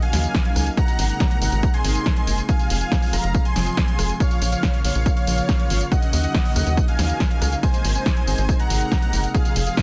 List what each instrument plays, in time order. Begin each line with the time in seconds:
0.02 supersaw synth F5 G#5, closed hi-hat
0.13 analog synth bass D#2, analog synth pad C#3 F#3 A#3 D#4, snare, open hi-hat, tambourine
0.24 closed hi-hat, tambourine
0.35 analog synth pad C#3 F#3 A#3 D#4, kick, snare, closed hi-hat, tambourine
0.45 analog synth pad C#3 F#3 A#3 D#4, closed hi-hat
0.56 analog synth bass C#2, cross-stick, open hi-hat, tambourine
0.67 closed hi-hat, tambourine
0.77 analog synth pad C3 G#3 A#3 D#4, supersaw synth F#5 A#5, kick, closed hi-hat, tambourine
0.88 closed hi-hat, tambourine
0.99 analog synth bass G#1, open hi-hat, tambourine
1.10 analog synth pad C3 G#3 A#3 D#4, supersaw synth F#5 A#5, closed hi-hat, tambourine
1.20 kick, snare, closed hi-hat, tambourine
1.31 analog synth pad C3 G#3 A#3 D#4, closed hi-hat
1.42 analog synth bass G#1, supersaw synth F#5 A#5, open hi-hat, tambourine
1.52 analog synth bass G#1, closed hi-hat, tambourine
1.63 analog synth pad C3 G#3 A#3 D#4, kick, closed hi-hat, tambourine
1.74 supersaw synth G#5 C6, closed hi-hat
1.84 analog synth bass G#1, analog synth pad C3 G#3 A#3 D#4, open hi-hat, tambourine
1.95 closed hi-hat, tambourine
2.06 analog synth pad C3 G#3 A#3 D#4, kick, snare, closed hi-hat, tambourine
2.17 analog synth pad C3 G#3 A#3 D#4, closed hi-hat
2.27 analog synth bass F#1, open hi-hat, tambourine
2.38 closed hi-hat, tambourine
2.49 analog synth pad C3 F3 G#3 F4, supersaw synth F5 G#5, kick, closed hi-hat, tambourine
2.59 closed hi-hat, tambourine
2.70 analog synth bass F1, open hi-hat, tambourine
2.81 analog synth pad C3 F3 G#3 F4, supersaw synth F5 G#5, closed hi-hat, tambourine
2.92 kick, snare, closed hi-hat, tambourine
3.02 analog synth pad C3 F3 G#3 F4, open hi-hat, tambourine
3.13 analog synth bass F1, supersaw synth F5 A#5, cross-stick, open hi-hat, tambourine
3.24 analog synth bass F1, closed hi-hat, tambourine
3.34 analog synth pad C3 F3 G#3 F4, kick, closed hi-hat, tambourine
3.45 supersaw synth G#5 C6, closed hi-hat
3.56 analog synth bass F1, analog synth pad C3 F3 G#3 F4, snare, open hi-hat, tambourine
3.67 closed hi-hat, tambourine
3.77 analog synth pad C3 F3 G#3 F4, kick, snare, closed hi-hat, tambourine
3.88 analog synth pad C3 F3 G#3 F4, closed hi-hat
3.99 analog synth bass F1, cross-stick, open hi-hat, tambourine
4.09 closed hi-hat, tambourine
4.20 analog synth pad C#3 F3 A#3 F4, supersaw synth C#5 F5, kick, closed hi-hat, tambourine
4.31 closed hi-hat, tambourine
4.42 analog synth bass A#1, open hi-hat, tambourine
4.52 analog synth pad C#3 F3 A#3 F4, supersaw synth C#5 F5, closed hi-hat, tambourine
4.63 kick, snare, closed hi-hat, tambourine
4.74 analog synth pad C#3 F3 A#3 F4, closed hi-hat
4.84 analog synth bass A#1, supersaw synth C#5 F5, open hi-hat, tambourine
4.95 analog synth bass A#1, closed hi-hat, tambourine
5.06 analog synth pad C#3 F3 A#3 F4, kick, closed hi-hat, tambourine
5.17 supersaw synth C#5 F5, closed hi-hat
5.27 analog synth bass A#1, analog synth pad C#3 F3 A#3 F4, open hi-hat, tambourine
5.38 closed hi-hat, tambourine
5.49 analog synth pad C#3 F3 A#3 F4, kick, snare, closed hi-hat, tambourine
5.59 analog synth pad C#3 F3 A#3 F4, closed hi-hat
5.70 analog synth bass G#1, open hi-hat, tambourine
5.81 closed hi-hat, tambourine
5.92 analog synth pad C#3 F#3 A#3 D#4, supersaw synth D#5 F#5, kick, closed hi-hat, tambourine
6.02 closed hi-hat, tambourine
6.13 analog synth bass D#2, open hi-hat, tambourine
6.24 analog synth pad C#3 F#3 A#3 D#4, supersaw synth D#5 F#5, closed hi-hat, tambourine
6.35 kick, snare, closed hi-hat, tambourine
6.45 analog synth pad C#3 F#3 A#3 D#4, open hi-hat
6.56 analog synth bass D#2, supersaw synth D#5 F#5, cross-stick, open hi-hat, tambourine
6.67 analog synth bass D#2, closed hi-hat, tambourine
6.77 analog synth pad C#3 F#3 A#3 D#4, kick, closed hi-hat, tambourine
6.88 supersaw synth F5 G#5, closed hi-hat
6.99 analog synth bass D#2, analog synth pad C#3 F#3 A#3 D#4, snare, open hi-hat, tambourine
7.10 closed hi-hat, tambourine
7.20 analog synth pad C#3 F#3 A#3 D#4, kick, snare, closed hi-hat, tambourine
7.31 analog synth pad C#3 F#3 A#3 D#4, closed hi-hat
7.42 analog synth bass C#2, cross-stick, open hi-hat, tambourine
7.52 closed hi-hat, tambourine
7.63 analog synth pad C3 G#3 A#3 D#4, supersaw synth C5 G#5, kick, closed hi-hat, tambourine
7.74 closed hi-hat, tambourine
7.85 analog synth bass G#1, open hi-hat, tambourine
7.95 analog synth pad C3 G#3 A#3 D#4, supersaw synth C5 G#5, closed hi-hat, tambourine
8.06 kick, snare, closed hi-hat, tambourine
8.17 analog synth pad C3 G#3 A#3 D#4, closed hi-hat
8.27 analog synth bass G#1, supersaw synth C5 G#5, open hi-hat, tambourine
8.38 analog synth bass G#1, closed hi-hat, tambourine
8.49 analog synth pad C3 G#3 A#3 D#4, kick, closed hi-hat, tambourine
8.60 supersaw synth F#5 A#5, closed hi-hat
8.70 analog synth bass G#1, analog synth pad C3 G#3 A#3 D#4, open hi-hat, tambourine
8.81 closed hi-hat, tambourine
8.92 analog synth pad C3 G#3 A#3 D#4, kick, snare, closed hi-hat, tambourine
9.02 analog synth pad C3 G#3 A#3 D#4, closed hi-hat
9.13 analog synth bass F#1, open hi-hat, tambourine
9.24 closed hi-hat, tambourine
9.34 analog synth pad C3 F3 G#3 F4, supersaw synth G#4 F5, kick, closed hi-hat, tambourine
9.45 closed hi-hat, tambourine
9.56 analog synth bass F1, open hi-hat, tambourine
9.67 analog synth pad C3 F3 G#3 F4, supersaw synth G#4 F5, closed hi-hat, tambourine
9.77 kick, snare, closed hi-hat, tambourine